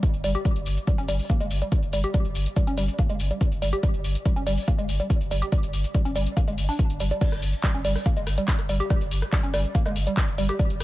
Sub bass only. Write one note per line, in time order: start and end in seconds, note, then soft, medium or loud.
0.14 0.24 G1 medium
0.24 0.35 G1 loud
0.56 0.66 G1 medium
0.66 0.77 G1 loud
0.98 1.08 G1 medium
1.09 1.19 G1 loud
1.41 1.50 G1 medium
1.51 1.61 G1 loud
1.83 1.92 G1 medium
1.93 2.04 G1 loud
2.25 2.35 G1 medium
2.35 2.46 G1 loud
2.67 2.77 G1 medium
2.77 2.88 G1 loud
3.09 3.19 G1 medium
3.20 3.30 G1 loud
3.52 3.61 G1 medium
3.62 3.73 G1 loud
3.94 4.04 G1 medium
4.04 4.15 G1 loud
4.36 4.46 G1 medium
4.47 4.57 G1 loud
4.79 4.88 G1 medium
4.89 4.99 G1 loud
5.21 5.31 G1 medium
5.31 5.42 G1 loud
5.63 5.73 G1 medium
5.73 5.84 G1 loud
6.05 6.15 G1 medium
6.16 6.26 G1 loud
6.48 6.57 G1 medium
6.58 6.69 G1 loud
6.90 7.00 G1 medium
7.00 7.11 G1 loud
7.32 7.42 G1 medium
7.42 7.53 G1 loud
7.74 7.84 G1 medium
7.85 7.95 G1 loud
8.17 8.26 G1 medium
8.27 8.37 G1 loud
8.59 8.68 G1 medium
8.69 8.80 G1 loud
9.01 9.11 G1 medium
9.11 9.22 G1 loud
9.43 9.53 G1 medium
9.54 9.64 G1 loud
9.86 9.95 G1 medium
9.96 10.07 G1 loud
10.28 10.38 G1 medium
10.38 10.49 G1 loud
10.70 10.80 G1 medium
10.80 10.84 G1 loud